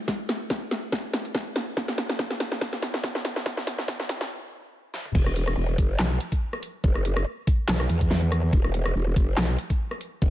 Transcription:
0.08 kick, snare
0.29 snare, closed hi-hat
0.50 kick, snare
0.71 snare, closed hi-hat
0.92 kick, snare
1.13 snare, closed hi-hat
1.25 closed hi-hat
1.35 kick, snare
1.56 snare, closed hi-hat
1.77 kick, snare
1.88 snare
1.98 snare, closed hi-hat
2.09 snare
2.19 kick, snare
2.31 snare
2.40 snare, closed hi-hat
2.52 snare
2.61 kick, snare
2.73 snare
2.82 snare, closed hi-hat
2.94 snare, closed hi-hat
3.04 kick, snare
3.15 snare
3.25 snare, closed hi-hat
3.36 snare
3.46 kick, snare
3.57 snare
3.67 snare, closed hi-hat
3.79 snare
3.88 kick, snare
4.00 snare
4.09 snare, closed hi-hat
4.21 snare
4.94 snare
5.05 mid tom
5.15 E1, kick, crash
5.26 cross-stick
5.36 closed hi-hat
5.47 cross-stick
5.57 E1
5.78 F#1, kick, closed hi-hat
5.99 B1, cross-stick, snare, clap
6.20 closed hi-hat
6.32 kick, closed hi-hat
6.53 cross-stick
6.63 closed hi-hat
6.84 F#1, kick
6.95 cross-stick
7.05 closed hi-hat
7.17 cross-stick
7.47 kick, closed hi-hat
7.68 B1, snare, clap
7.80 cross-stick
7.89 E2, closed hi-hat
8.01 kick, closed hi-hat
8.11 snare
8.32 cross-stick, closed hi-hat
8.53 E1, kick
8.64 cross-stick
8.74 closed hi-hat
8.86 cross-stick
8.95 E1
9.16 F#1, kick, closed hi-hat
9.37 B1, cross-stick, snare, clap
9.59 closed hi-hat
9.70 kick, closed hi-hat
9.91 cross-stick
10.01 closed hi-hat
10.22 F#1, kick

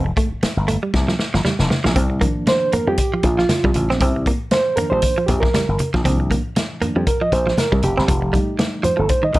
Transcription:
0.06 muted clean electric guitar stroke
0.17 A3, kick, closed hi-hat
0.32 muted slap bass stroke
0.43 muted clean electric guitar stroke, muted slap bass stroke, snare, closed hi-hat, high conga
0.57 G1
0.68 A3, closed hi-hat, low conga
0.83 G3
0.94 C2, kick, snare, muted conga
1.08 F3, snare
1.19 muted clean electric guitar stroke, snare
1.34 G1 F3, snare
1.45 G3, snare, high conga
1.59 F1, snare, high conga
1.70 muted clean electric guitar stroke, snare, high conga
1.84 A#1 F3, snare
1.96 C2 C4, kick, closed hi-hat, muted conga
2.10 muted clean electric guitar stroke
2.21 D#3 F3 A#3 D4, kick, closed hi-hat
2.47 C5, muted clean electric guitar stroke, snare, closed hi-hat, high conga
2.72 A#3 A#4, muted slap bass stroke, closed hi-hat, low conga
2.87 F2 G3 G4
2.97 kick, closed hi-hat, muted conga
3.14 F3
3.23 A#1 F4, muted clean electric guitar stroke, kick, closed hi-hat, muted conga
3.38 F3 F4, snare
3.49 snare, closed hi-hat, high conga
3.64 C2 G3, kick
3.74 A1, muted clean electric guitar stroke, closed hi-hat, high conga
3.89 A#1 C4, snare
4.00 C2 C4, kick, closed hi-hat, muted conga
4.16 muted clean electric guitar stroke
4.26 A#3, kick, closed hi-hat
4.51 C5, muted clean electric guitar stroke, snare, closed hi-hat, high conga
4.76 D#3 F3 A#3 D4 A#4, muted slap bass stroke, closed hi-hat, low conga
4.90 A#1 G3 C5
5.02 kick, closed hi-hat, muted conga
5.18 F3
5.26 A#1 G4, muted clean electric guitar stroke, kick, closed hi-hat, low conga
5.40 F3 A#4, kick, snare
5.54 G3, muted slap bass stroke, snare, closed hi-hat, high conga
5.68 G1
5.79 muted clean electric guitar stroke, closed hi-hat, high conga
5.94 A#1 F3, kick, snare
6.04 C2 D#3 F3 A#3 C4 D4, kick, closed hi-hat, muted conga
6.20 muted clean electric guitar stroke
6.31 A#3, kick, closed hi-hat
6.56 muted clean electric guitar stroke, snare, closed hi-hat, high conga
6.81 D#3 F3 A#3 D4, muted slap bass stroke, closed hi-hat, low conga
6.96 F2 G3
7.07 A#4, kick, closed hi-hat, muted conga
7.21 F3 D#5
7.32 A#1 C5, muted clean electric guitar stroke, kick, closed hi-hat
7.47 F3, snare
7.57 A#4, snare, closed hi-hat, high conga
7.72 C2 G3, kick
7.82 F1 G4, muted clean electric guitar stroke, closed hi-hat, high conga
7.97 G1 C4, snare
8.08 F1 F3, kick, closed hi-hat, muted conga
8.22 muted clean electric guitar stroke
8.33 G3 A3 D#4, kick, closed hi-hat
8.59 muted clean electric guitar stroke, snare, closed hi-hat, high conga
8.83 F3 C5, muted slap bass stroke, closed hi-hat, low conga
8.97 G1 F3 A4
9.09 C5, kick, closed hi-hat, muted conga
9.23 D#3 D#5
9.33 G1 D#5, muted clean electric guitar stroke, kick, closed hi-hat, muted conga, low conga

